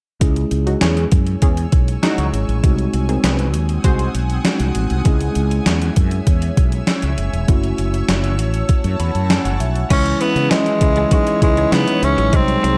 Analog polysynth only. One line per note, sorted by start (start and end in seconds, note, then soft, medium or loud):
0.67 0.79 F#3 medium
0.67 0.79 D#4 medium
0.67 0.79 F#4 medium
0.82 1.06 E3 medium
0.82 1.06 C#4 medium
0.82 1.06 G#4 loud
1.42 1.67 E3 medium
1.42 1.67 C#4 medium
1.42 1.67 G#4 loud
2.03 2.27 F#3 loud
2.03 2.27 D#4 loud
2.03 2.27 F#4 loud
3.09 3.21 D#3 medium
3.09 3.21 C4 medium
3.09 3.21 G#4 medium
3.24 3.48 C4 medium
3.24 3.48 G#4 medium
3.24 3.48 B4 loud
3.85 4.09 G#3 medium
3.85 4.09 F#4 medium
3.85 4.09 C5 loud